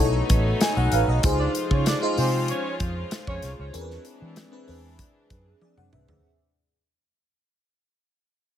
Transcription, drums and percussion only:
0.30 kick, closed hi-hat
0.61 snare, closed hi-hat
0.92 closed hi-hat
1.23 kick, closed hi-hat
1.55 closed hi-hat
1.71 kick
1.86 snare, closed hi-hat
2.18 open hi-hat
2.48 closed hi-hat
2.80 kick, closed hi-hat
3.11 snare, closed hi-hat
3.27 kick
3.42 snare, closed hi-hat
3.74 closed hi-hat
3.90 snare
4.05 closed hi-hat
4.36 snare, closed hi-hat
4.68 open hi-hat
4.99 kick, closed hi-hat
5.30 kick, closed hi-hat
5.62 high tom
5.77 mid tom
5.93 mid tom
6.08 floor tom

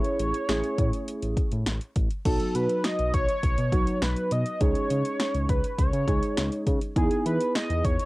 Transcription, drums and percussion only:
0.04 closed hi-hat
0.20 closed hi-hat
0.34 closed hi-hat
0.49 snare, closed hi-hat
0.64 closed hi-hat
0.78 kick, closed hi-hat
0.93 closed hi-hat
1.08 closed hi-hat
1.23 closed hi-hat
1.37 kick, closed hi-hat
1.52 closed hi-hat
1.67 snare, closed hi-hat
1.81 closed hi-hat
1.96 kick, closed hi-hat
2.11 closed hi-hat
2.25 kick, closed hi-hat, crash
2.40 closed hi-hat
2.55 closed hi-hat
2.69 closed hi-hat
2.84 snare, closed hi-hat
2.99 closed hi-hat
3.14 kick, closed hi-hat
3.28 closed hi-hat
3.43 kick, closed hi-hat
3.58 closed hi-hat
3.72 kick, closed hi-hat
3.87 closed hi-hat
4.02 snare, closed hi-hat
4.16 closed hi-hat
4.31 closed hi-hat
4.46 closed hi-hat
4.61 kick, closed hi-hat
4.75 closed hi-hat
4.90 closed hi-hat
5.05 closed hi-hat
5.20 snare, closed hi-hat
5.34 closed hi-hat
5.49 kick, closed hi-hat
5.64 closed hi-hat
5.78 kick, closed hi-hat
5.93 closed hi-hat
6.08 kick, closed hi-hat
6.23 closed hi-hat
6.37 snare, closed hi-hat
6.52 closed hi-hat
6.67 kick, closed hi-hat
6.81 closed hi-hat
6.96 kick, closed hi-hat
7.11 closed hi-hat
7.26 closed hi-hat
7.40 closed hi-hat
7.55 snare, closed hi-hat
7.70 closed hi-hat
7.84 kick, closed hi-hat
7.99 closed hi-hat

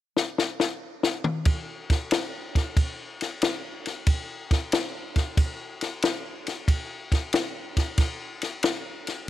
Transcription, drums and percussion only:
0.17 snare
0.38 snare
0.60 snare
1.03 snare
1.24 mid tom
1.45 kick, ride
1.90 kick, snare, ride
2.11 snare, ride
2.55 kick, snare, ride
2.77 kick, ride
3.21 snare, ride
3.42 snare, ride
3.86 snare, ride
4.07 kick, ride
4.51 kick, snare, ride
4.72 snare, ride
5.16 kick, snare, ride
5.37 kick, ride
5.81 snare, ride
6.02 snare, ride
6.47 snare, ride
6.68 kick, ride
7.12 kick, snare, ride
7.33 snare, ride
7.77 kick, snare, ride
7.98 kick, snare, ride
8.42 snare, ride
8.63 snare, ride
9.07 snare, ride

